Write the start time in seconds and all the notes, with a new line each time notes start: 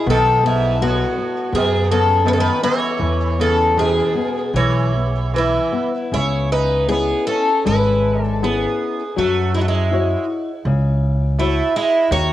0.07 B1 D#3 B3 A4
0.44 G#2 B3 E4
0.82 A2 B3 F#4
1.18 B3
1.53 F#2 B2 B3 G#4
1.91 C#3 B3 A4
2.26 D#3 B3 B4
2.31 C#3 A4
2.38 D#3 B4
2.63 E3 B3 C#5
2.99 E2 E3
3.39 C#3 B3 A4
3.76 B2 E3 G#4
4.15 B3
4.53 B1 E3 C#5
4.95 B3
5.34 E3 B4
5.38 E4
5.72 B3
6.12 C#2 C#3 E4 C#5
6.52 D#4 B4
6.88 B3 C#4 E4 G#4
6.92 B3
7.27 C#4 A4
7.65 G#1 G#3 E4 B4
8.19 D4
8.24 A4
8.42 B3 C#4 E4 G#4
9.16 F#2 F#3 A3 F#4
9.55 G#3 E4
9.61 A3 F#4
9.68 G#3 E4
9.91 E4 F#4 C#5
10.65 C#2 C#3
11.39 A3 E4 F#4 C#5
11.76 G#3 E4
12.11 D#2 D#3 F#4 C#5